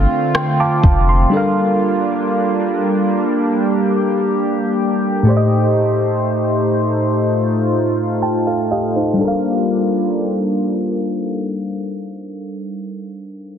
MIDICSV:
0, 0, Header, 1, 5, 480
1, 0, Start_track
1, 0, Key_signature, -2, "minor"
1, 0, Tempo, 983607
1, 649, Time_signature, 4, 2, 24, 8
1, 6627, End_track
2, 0, Start_track
2, 0, Title_t, "FM electric piano"
2, 0, Program_c, 0, 5
2, 0, Control_c, 0, 64, 127
2, 0, Note_on_c, 0, 50, 69
2, 0, Note_on_c, 0, 62, 60
2, 0, Note_on_c, 0, 69, 65
2, 0, Note_on_c, 0, 72, 62
2, 0, Note_on_c, 0, 77, 64
2, 153, Note_off_c, 0, 77, 0
2, 172, Note_on_c, 0, 79, 69
2, 173, Note_on_c, 0, 84, 58
2, 282, Note_off_c, 0, 79, 0
2, 285, Note_off_c, 0, 84, 0
2, 293, Note_on_c, 0, 81, 64
2, 293, Note_on_c, 0, 86, 65
2, 296, Note_on_c, 0, 77, 60
2, 382, Note_off_c, 0, 50, 0
2, 387, Note_off_c, 0, 62, 0
2, 391, Note_off_c, 0, 69, 0
2, 396, Note_off_c, 0, 72, 0
2, 519, Note_off_c, 0, 86, 0
2, 520, Note_off_c, 0, 77, 0
2, 532, Note_on_c, 0, 84, 61
2, 631, Note_off_c, 0, 81, 0
2, 632, Note_on_c, 0, 55, 69
2, 641, Note_on_c, 0, 62, 65
2, 650, Note_on_c, 0, 69, 63
2, 655, Control_c, 0, 64, 0
2, 659, Note_on_c, 0, 70, 61
2, 667, Note_on_c, 0, 77, 75
2, 742, Control_c, 0, 64, 127
2, 758, Note_off_c, 0, 84, 0
2, 2541, Note_off_c, 0, 55, 0
2, 2545, Note_off_c, 0, 62, 0
2, 2550, Note_off_c, 0, 69, 0
2, 2552, Note_on_c, 0, 45, 67
2, 2554, Note_off_c, 0, 70, 0
2, 2558, Note_off_c, 0, 77, 0
2, 2561, Note_on_c, 0, 57, 62
2, 2570, Note_on_c, 0, 67, 64
2, 2574, Control_c, 0, 64, 0
2, 2578, Note_on_c, 0, 72, 62
2, 2587, Note_on_c, 0, 74, 60
2, 2609, Note_off_c, 0, 74, 0
2, 2619, Note_on_c, 0, 75, 74
2, 2645, Control_c, 0, 64, 127
2, 3990, Note_off_c, 0, 67, 0
2, 3994, Note_off_c, 0, 72, 0
2, 4012, Note_on_c, 0, 79, 56
2, 4013, Note_on_c, 0, 81, 64
2, 4014, Note_off_c, 0, 75, 0
2, 4124, Note_off_c, 0, 79, 0
2, 4133, Note_on_c, 0, 77, 63
2, 4136, Note_on_c, 0, 69, 52
2, 4234, Note_off_c, 0, 81, 0
2, 4245, Note_off_c, 0, 77, 0
2, 4247, Note_off_c, 0, 69, 0
2, 4253, Note_on_c, 0, 75, 65
2, 4253, Note_on_c, 0, 77, 62
2, 4256, Note_on_c, 0, 67, 53
2, 4365, Note_off_c, 0, 75, 0
2, 4366, Note_off_c, 0, 67, 0
2, 4372, Note_on_c, 0, 72, 55
2, 4375, Note_on_c, 0, 63, 48
2, 4458, Note_on_c, 0, 55, 69
2, 4461, Note_off_c, 0, 45, 0
2, 4465, Note_off_c, 0, 57, 0
2, 4474, Note_off_c, 0, 77, 0
2, 4476, Note_on_c, 0, 62, 67
2, 4493, Note_on_c, 0, 69, 68
2, 4495, Control_c, 0, 64, 0
2, 4511, Note_on_c, 0, 70, 65
2, 4528, Note_on_c, 0, 77, 83
2, 4573, Control_c, 0, 64, 127
2, 4598, Note_off_c, 0, 72, 0
2, 4600, Note_off_c, 0, 63, 0
2, 5948, Note_off_c, 0, 55, 0
2, 5966, Note_off_c, 0, 62, 0
2, 5983, Note_off_c, 0, 69, 0
2, 6000, Note_off_c, 0, 70, 0
2, 6017, Note_off_c, 0, 77, 0
2, 6627, End_track
3, 0, Start_track
3, 0, Title_t, "Analog synth pad"
3, 0, Program_c, 1, 89
3, 0, Note_on_c, 1, 50, 81
3, 0, Note_on_c, 1, 57, 78
3, 0, Note_on_c, 1, 60, 77
3, 0, Note_on_c, 1, 65, 89
3, 629, Note_off_c, 1, 50, 0
3, 629, Note_off_c, 1, 57, 0
3, 629, Note_off_c, 1, 60, 0
3, 646, Note_on_c, 1, 58, 88
3, 646, Note_on_c, 1, 62, 73
3, 647, Note_on_c, 1, 55, 76
3, 1589, Note_off_c, 1, 65, 0
3, 1607, Note_on_c, 1, 67, 85
3, 2548, Note_off_c, 1, 55, 0
3, 2548, Note_off_c, 1, 58, 0
3, 2548, Note_off_c, 1, 62, 0
3, 2565, Note_on_c, 1, 57, 78
3, 2565, Note_on_c, 1, 63, 68
3, 2565, Note_on_c, 1, 72, 86
3, 3508, Note_off_c, 1, 67, 0
3, 3527, Note_on_c, 1, 65, 92
3, 4468, Note_off_c, 1, 57, 0
3, 4468, Note_off_c, 1, 63, 0
3, 4468, Note_off_c, 1, 72, 0
3, 4478, Note_off_c, 1, 65, 0
3, 4486, Note_on_c, 1, 55, 77
3, 4487, Note_on_c, 1, 58, 82
3, 4487, Note_on_c, 1, 62, 72
3, 4487, Note_on_c, 1, 65, 73
3, 5976, Note_off_c, 1, 55, 0
3, 5976, Note_off_c, 1, 58, 0
3, 5976, Note_off_c, 1, 62, 0
3, 5976, Note_off_c, 1, 65, 0
3, 6627, End_track
4, 0, Start_track
4, 0, Title_t, "Sub bass"
4, 0, Program_c, 2, 38
4, 409, Note_on_c, 2, 29, 92
4, 615, Note_off_c, 2, 29, 0
4, 6627, End_track
5, 0, Start_track
5, 0, Title_t, "Drums"
5, 170, Note_on_c, 9, 37, 110
5, 218, Note_off_c, 9, 37, 0
5, 407, Note_on_c, 9, 36, 93
5, 456, Note_off_c, 9, 36, 0
5, 6627, End_track
0, 0, End_of_file